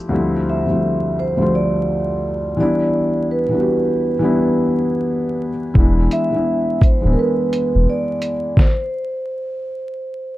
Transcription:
0.00 0.10 F3 medium
0.00 0.11 G3 medium
0.00 0.12 A3 medium
0.00 0.12 C4 medium
0.00 0.12 G4 medium
0.09 0.62 D2 medium
0.09 0.62 F3 medium
0.09 0.63 G3 medium
0.09 0.63 A3 medium
0.13 0.64 C4 medium
0.13 0.65 E4 medium
0.49 1.20 E5 medium
0.66 1.31 D2 medium
0.66 1.31 F3 medium
0.66 1.32 G3 medium
0.66 1.32 A3 medium
0.70 1.33 C4 medium
0.70 1.34 E4 medium
1.19 1.54 C5 medium
1.37 2.57 D2 medium
1.37 2.57 F3 medium
1.37 2.56 G3 medium
1.37 2.58 A3 medium
1.41 2.59 C4 medium
1.41 2.59 F4 medium
1.55 2.59 D5 medium
2.57 3.41 E3 medium
2.57 3.42 G3 medium
2.57 3.43 B3 medium
2.57 3.25 D5 medium
2.61 3.44 D4 medium
2.61 3.44 E4 medium
3.31 5.37 B4 medium
3.49 4.13 E3 medium
3.49 4.14 G3 medium
3.49 4.15 B3 medium
3.53 4.15 D4 medium
3.53 3.57 F#4 medium
3.61 4.19 G4 medium
4.19 5.48 E3 medium
4.19 5.49 G3 medium
4.19 5.49 B3 medium
4.23 5.50 D4 medium
4.23 5.51 E4 medium
5.74 6.08 E1 loud
5.74 6.27 E3 medium
5.74 6.27 G#3 medium
5.74 6.28 B3 medium
5.74 kick medium
5.79 6.29 D4 medium
5.79 6.30 E4 medium
6.11 6.84 E5 loud
6.11 closed hi-hat medium
6.30 6.95 E3 medium
6.30 6.96 G#3 medium
6.30 6.97 B3 medium
6.35 6.97 D4 medium
6.35 6.98 E4 medium
6.82 7.13 C5 medium
6.82 kick medium
6.82 closed hi-hat medium
7.01 7.16 D1 medium
7.01 8.30 E3 medium
7.01 8.31 G#3 medium
7.01 8.31 B3 medium
7.05 8.32 D4 medium
7.05 8.33 E4 medium
7.13 7.17 A#4 medium
7.19 7.90 B4 medium
7.53 closed hi-hat medium
7.75 7.86 E1 medium
7.89 8.61 D5 medium
8.22 closed hi-hat medium
8.57 10.38 C5 medium
8.57 kick medium
8.57 snare medium

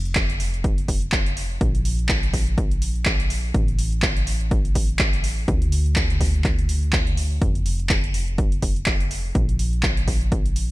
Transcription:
0.00 1.59 F1 medium
0.05 closed hi-hat soft
0.15 kick loud
0.15 clap loud
0.15 closed hi-hat medium
0.30 closed hi-hat medium
0.40 open hi-hat loud
0.54 closed hi-hat soft
0.64 kick loud
0.64 closed hi-hat medium
0.78 closed hi-hat medium
0.88 kick medium
0.88 open hi-hat loud
1.02 closed hi-hat soft
1.12 kick loud
1.12 clap loud
1.12 closed hi-hat medium
1.26 closed hi-hat medium
1.37 open hi-hat loud
1.61 3.52 A#1 medium
1.61 kick loud
1.61 closed hi-hat medium
1.75 closed hi-hat soft
1.85 open hi-hat loud
1.99 closed hi-hat soft
2.09 kick loud
2.09 clap loud
2.09 closed hi-hat medium
2.23 closed hi-hat medium
2.34 kick medium
2.34 open hi-hat loud
2.47 closed hi-hat soft
2.58 kick loud
2.58 closed hi-hat medium
2.71 closed hi-hat medium
2.82 open hi-hat loud
2.96 closed hi-hat soft
3.05 kick loud
3.05 clap loud
3.05 closed hi-hat medium
3.20 closed hi-hat medium
3.30 open hi-hat loud
3.54 5.46 A1 medium
3.54 kick loud
3.54 closed hi-hat medium
3.68 closed hi-hat soft
3.79 open hi-hat loud
3.92 closed hi-hat soft
4.02 kick loud
4.02 clap loud
4.02 closed hi-hat medium
4.17 closed hi-hat medium
4.27 open hi-hat loud
4.41 closed hi-hat soft
4.51 kick loud
4.51 closed hi-hat medium
4.65 closed hi-hat soft
4.75 kick medium
4.75 open hi-hat loud
4.89 closed hi-hat soft
4.99 kick loud
4.99 clap loud
4.99 closed hi-hat medium
5.13 closed hi-hat soft
5.24 open hi-hat loud
5.48 7.40 D2 medium
5.48 kick loud
5.48 closed hi-hat medium
5.62 closed hi-hat soft
5.72 open hi-hat loud
5.86 closed hi-hat soft
5.96 kick loud
5.96 clap loud
5.96 closed hi-hat medium
6.10 closed hi-hat soft
6.21 kick medium
6.21 open hi-hat loud
6.34 closed hi-hat soft
6.44 kick loud
6.44 clap medium
6.44 closed hi-hat medium
6.59 closed hi-hat soft
6.69 open hi-hat loud
6.83 closed hi-hat soft
6.93 kick loud
6.93 clap loud
6.93 closed hi-hat medium
7.07 closed hi-hat soft
7.17 open hi-hat loud
7.42 9.33 F1 medium
7.42 kick loud
7.42 closed hi-hat medium
7.55 closed hi-hat soft
7.66 open hi-hat loud
7.80 closed hi-hat soft
7.89 kick loud
7.89 clap loud
7.89 closed hi-hat medium
8.04 closed hi-hat soft
8.14 open hi-hat loud
8.28 closed hi-hat soft
8.38 kick loud
8.38 closed hi-hat medium
8.52 closed hi-hat soft
8.62 kick medium
8.62 open hi-hat loud
8.76 closed hi-hat soft
8.86 kick loud
8.86 clap loud
8.86 closed hi-hat medium
9.01 closed hi-hat soft
9.11 open hi-hat loud
9.35 10.71 A#1 medium
9.35 kick loud
9.35 closed hi-hat medium
9.49 closed hi-hat soft
9.59 open hi-hat loud
9.73 closed hi-hat soft
9.83 kick loud
9.83 clap loud
9.83 closed hi-hat medium
9.97 closed hi-hat medium
10.08 kick medium
10.08 open hi-hat loud
10.21 closed hi-hat soft
10.32 kick loud
10.32 closed hi-hat medium
10.46 closed hi-hat soft
10.56 open hi-hat loud

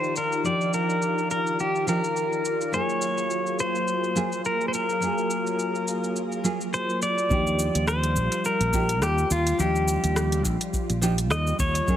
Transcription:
0.00 2.69 D#3 medium
0.00 7.27 F4 medium
0.00 2.69 G4 medium
0.00 0.17 C5 medium
0.00 2.69 D5 medium
0.00 shaker soft
0.16 0.46 A#4 medium
0.16 shaker medium
0.32 shaker soft
0.43 1.84 F3 medium
0.43 1.84 D4 medium
0.43 1.85 D#4 medium
0.43 1.85 G4 medium
0.43 0.72 D5 medium
0.43 shaker soft
0.61 shaker soft
0.73 1.30 A#4 medium
0.73 shaker medium
0.90 shaker soft
1.02 shaker soft
1.18 shaker soft
1.31 1.60 A#4 medium
1.31 shaker medium
1.47 shaker soft
1.59 1.88 G4 medium
1.59 shaker soft
1.76 shaker soft
1.87 1.99 F3 medium
1.87 1.99 D4 medium
1.87 1.99 D#4 medium
1.87 1.99 G4 loud
1.87 2.76 A#4 medium
1.87 shaker medium
2.04 shaker soft
2.16 shaker soft
2.33 shaker soft
2.45 shaker medium
2.61 shaker soft
2.72 4.12 F#3 medium
2.72 7.26 F#3 medium
2.72 4.13 A#3 medium
2.72 7.26 A#3 medium
2.72 4.13 F4 medium
2.72 7.27 G#4 medium
2.72 4.14 G#4 medium
2.72 3.60 C#5 medium
2.72 shaker soft
2.89 shaker soft
3.02 shaker medium
3.18 shaker soft
3.30 shaker soft
3.47 shaker soft
3.59 4.41 C5 medium
3.59 shaker medium
3.75 shaker soft
3.88 shaker soft
4.04 shaker soft
4.15 4.27 F#3 medium
4.15 4.27 A#3 medium
4.15 4.28 F4 medium
4.15 4.28 G#4 medium
4.15 shaker medium
4.32 shaker soft
4.45 4.68 A#4 medium
4.45 shaker soft
4.61 shaker soft
4.68 4.74 C5 medium
4.74 6.70 A#4 medium
4.74 shaker medium
4.89 shaker soft
5.00 6.41 F#3 medium
5.00 6.41 A#3 medium
5.00 6.42 F4 medium
5.00 6.42 G#4 medium
5.00 shaker soft
5.18 shaker soft
5.30 shaker medium
5.47 shaker soft
5.59 shaker soft
5.75 shaker soft
5.88 shaker medium
6.04 shaker soft
6.16 shaker soft
6.32 shaker soft
6.44 6.56 F#3 medium
6.44 6.56 A#3 medium
6.44 6.56 F4 medium
6.44 6.57 G#4 medium
6.44 shaker medium
6.61 shaker soft
6.74 7.00 C5 medium
6.74 shaker soft
6.90 shaker soft
7.02 7.88 D5 loud
7.02 shaker medium
7.18 shaker soft
7.29 7.67 D#2 loud
7.29 8.70 F3 medium
7.29 11.84 G3 medium
7.29 8.70 D4 medium
7.29 8.71 D#4 medium
7.29 11.97 F4 medium
7.29 8.71 G4 medium
7.29 kick loud
7.29 shaker soft
7.47 shaker soft
7.59 shaker medium
7.75 8.17 D#2 medium
7.75 closed hi-hat medium
7.75 shaker soft
7.87 8.47 C5 loud
7.87 cross-stick loud
7.87 shaker soft
8.04 closed hi-hat soft
8.04 shaker soft
8.16 8.27 A#1 medium
8.16 shaker medium
8.32 closed hi-hat medium
8.32 shaker soft
8.45 9.04 A#4 loud
8.45 shaker soft
8.60 9.02 A#1 medium
8.60 closed hi-hat soft
8.60 shaker soft
8.73 8.84 F3 medium
8.73 8.85 D4 medium
8.73 8.85 D#4 medium
8.73 8.85 G4 loud
8.73 kick loud
8.73 shaker medium
8.89 closed hi-hat medium
8.89 shaker soft
9.02 9.23 D#2 medium
9.02 9.32 G4 medium
9.02 cross-stick loud
9.02 shaker soft
9.18 shaker soft
9.31 9.51 D#2 medium
9.31 9.60 F4 medium
9.31 shaker medium
9.47 closed hi-hat medium
9.47 shaker soft
9.58 9.96 D#2 medium
9.58 10.98 F3 medium
9.58 10.99 D4 medium
9.58 10.99 D#4 medium
9.58 10.41 G4 medium
9.58 11.00 G4 medium
9.58 shaker soft
9.76 shaker soft
9.88 shaker medium
10.04 10.45 D#2 loud
10.04 closed hi-hat medium
10.04 shaker soft
10.16 cross-stick loud
10.16 shaker soft
10.32 closed hi-hat soft
10.32 shaker soft
10.45 10.56 A#1 loud
10.45 kick medium
10.45 shaker medium
10.61 closed hi-hat medium
10.61 shaker soft
10.73 kick medium
10.73 shaker soft
10.90 11.31 A#1 medium
10.90 closed hi-hat soft
10.90 shaker soft
11.01 11.13 F3 medium
11.01 11.13 D4 medium
11.01 11.14 D#4 medium
11.01 11.14 G4 loud
11.01 shaker medium
11.18 closed hi-hat medium
11.18 shaker soft
11.31 11.51 D#2 medium
11.31 11.59 D#5 loud
11.31 cross-stick loud
11.31 shaker soft
11.47 shaker soft
11.59 11.80 D#2 medium
11.59 11.97 C#5 loud
11.59 kick loud
11.59 shaker medium
11.75 closed hi-hat medium
11.75 shaker soft
11.86 11.97 F#2 medium
11.86 11.97 A#2 medium
11.86 11.97 F#3 medium
11.86 11.97 G#3 medium
11.86 11.97 A#3 medium
11.86 11.97 F4 medium
11.86 11.97 G#4 medium
11.86 kick loud
11.86 shaker soft

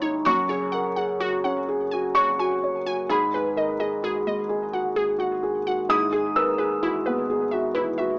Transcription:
0.00 0.26 G#1 medium
0.00 0.21 G#2 medium
0.00 0.28 C#4 medium
0.00 0.02 D#4 medium
0.00 0.25 D#4 medium
0.00 0.27 E4 medium
0.00 0.27 C#5 medium
0.00 0.16 C#5 medium
0.00 0.21 B5 loud
0.24 3.12 F#1 medium
0.24 3.07 F#2 medium
0.24 0.39 F#4 loud
0.24 2.12 C#6 medium
0.49 0.87 G#4 medium
0.49 0.63 C#5 medium
0.72 0.97 A#4 soft
0.72 0.86 F#5 medium
0.96 1.35 G#4 soft
0.96 1.11 F#5 medium
1.20 1.35 F#4 loud
1.20 1.58 F#4 soft
1.44 1.82 C#4 soft
1.44 1.58 F#5 medium
1.69 2.06 G#4 medium
1.91 2.31 F#4 soft
1.91 2.06 G#5 medium
2.15 2.30 F#4 loud
2.15 2.54 C#5 soft
2.15 3.06 C#6 medium
2.39 2.77 F#4 medium
2.39 2.54 G#5 medium
2.64 3.01 C#5 medium
2.86 3.10 F#4 soft
2.86 3.01 G#5 medium
3.09 8.19 G#1 medium
3.09 5.86 G#2 medium
3.09 3.24 G#4 medium
3.09 5.86 B5 medium
3.34 3.71 G#4 soft
3.34 3.48 B4 medium
3.56 3.80 A#4 soft
3.56 3.71 D#5 medium
3.79 4.17 G#4 medium
3.79 3.94 D#5 medium
4.02 4.40 F#4 soft
4.02 4.18 G#4 medium
4.27 4.64 G#3 medium
4.27 4.41 D#5 medium
4.49 4.87 G#4 medium
4.73 5.11 F#4 medium
4.73 4.88 F#5 medium
4.96 5.34 G#4 soft
4.96 5.11 G#4 medium
5.19 5.57 F#4 medium
5.19 5.34 F#5 medium
5.43 5.80 G#4 medium
5.67 5.90 F#4 soft
5.67 5.81 F#5 medium
5.89 8.19 G#2 medium
5.89 6.04 E4 loud
5.89 6.33 D#6 loud
6.12 6.50 G#4 medium
6.12 6.27 G#4 medium
6.36 6.59 A#4 soft
6.36 6.50 B4 medium
6.36 7.71 E6 medium
6.58 6.96 G#4 medium
6.58 6.73 B4 medium
6.82 6.97 E4 loud
6.82 7.20 F#4 medium
7.06 7.44 B3 medium
7.06 7.20 B4 medium
7.30 7.66 G#4 medium
7.51 7.89 F#4 medium
7.51 7.65 E5 medium
7.74 7.89 E4 medium
7.74 8.11 B4 medium
7.98 8.19 F#4 medium
7.98 8.12 E5 medium

